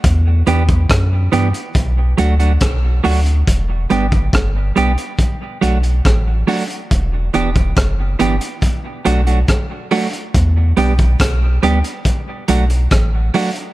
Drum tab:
HH |x-xxx-xxx-xxx-ox|x-xxx-xxx-xxx-ox|x-xxx-xxx-xxx-ox|x-xxx-xxx-xxx-ox|
SD |----r-------r---|----r-------r---|----r-------r---|----r-------r---|
BD |o--oo---o---o---|o--oo---o---o---|o--oo---o---o---|o--oo---o---o---|